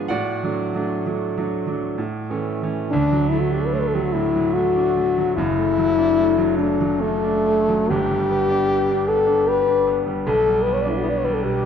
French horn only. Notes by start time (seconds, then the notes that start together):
2.91 D4
3.29 E4
3.41 F#4
3.52 G4
3.60 A4
3.66 B4
3.74 C#5
3.80 B4
3.87 A4
3.95 G4
4.04 F#4
4.13 E4
4.53 F#4
5.36 E4
6.58 D4
7.01 A3
7.89 G4
9.08 A4
9.48 B4
10.26 A4
10.62 B4
10.73 C#5
10.81 D5
10.90 E4
10.97 F#4
11.03 E4
11.10 D5
11.18 C#5
11.25 B4
11.34 A4
11.43 G4